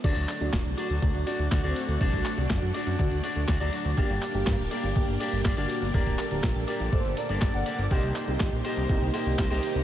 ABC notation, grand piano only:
X:1
M:4/4
L:1/16
Q:1/4=122
K:Dphr
V:1 name="Grand piano"
[^F,D]2 z [F,D]2 z [F,D] z [F,D] z [F,D]2 z [A,C]2 z | [D^F]2 z [DF]2 z [DF] z [DF] z [DF]2 z [^F,D]2 z | [B,G]2 z [B,G]2 z [B,G] z [B,G] z [B,G]2 z [D^F]2 z | [GB]2 z [GB]2 z [GB] z [Ac] z [Bd]2 z [d^f]2 z |
[EG]2 z [EG]2 z [EG] z [EG] z [EG]2 z [EG]2 z |]